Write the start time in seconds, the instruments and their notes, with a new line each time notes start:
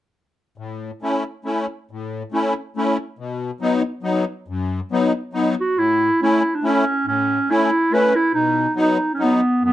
0.58 accordion A2
1.02 accordion A3 C#4 E4
1.45 accordion A3 C#4 E4
1.91 accordion A2
2.32 accordion A3 C#4 E4
2.76 accordion A3 C#4 E4
3.19 accordion B2
3.61 accordion F#3 B3 D#4
4.03 accordion F#3 B3 D#4
4.48 accordion F#2
4.92 accordion F#3 B3 D#4
5.33 accordion F#3 B3 D#4
5.60 clarinet F#4
5.77 accordion A2, clarinet E4
6.22 accordion A3 C#4 E4, clarinet E4
6.56 clarinet D4
6.63 accordion A3 C#4 E4, clarinet C#4
7.06 accordion A2, clarinet C#4
7.49 accordion A3 C#4 E4, clarinet E4
7.92 accordion A3 C#4 E4, clarinet B4
8.16 clarinet E4
8.34 accordion B2, clarinet D#4
8.75 accordion F#3 B3 D#4
8.81 clarinet D#4
9.14 clarinet C#4
9.19 accordion F#3 B3 D#4
9.23 clarinet B3
9.62 accordion F#2, clarinet B3